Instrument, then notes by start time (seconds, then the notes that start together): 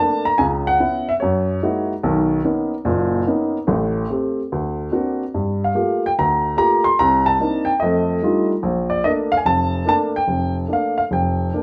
upright piano
Already playing: A5
0.00 A3 A#3 D4
0.25 A#5
0.38 C#2 C#3 G#5
0.67 F#5
0.80 B3 C#4 E4
1.09 E5
1.20 F#2 C#5
1.63 G#3 A#3 D#4 E4 F#4
2.03 B1 D#3
2.44 A#3 B3 C#4 D#4
2.85 F#1 A#2
3.27 A#3 B3 C#4 D#4
3.67 A1 A2
4.10 A3 C4 G4
4.52 D2
4.92 A#3 C4 D4 F#4
5.34 G2
5.64 F5
5.75 A3 A#3 F4 G4
6.06 G5
6.19 D2 A#5
6.57 A3 A#3 F4 G4 A#5
6.84 C6
6.99 C2 A#5
7.26 A5
7.40 A#3 C4 D4 D#4
7.65 G5
7.80 F2 A3 D#5
8.22 G3 A3 D4 D#4 F4
8.63 A#1
8.90 D5
9.04 A3 A#3 D4 D#5
9.32 F5
9.37 G#5
9.45 F1 A5
9.85 A3 A#3 D4 A5
10.16 G5
10.28 F1
10.68 A3 A#3 D4
10.73 F5
10.98 F5
11.11 F1 G5
11.53 A3 A#3 D4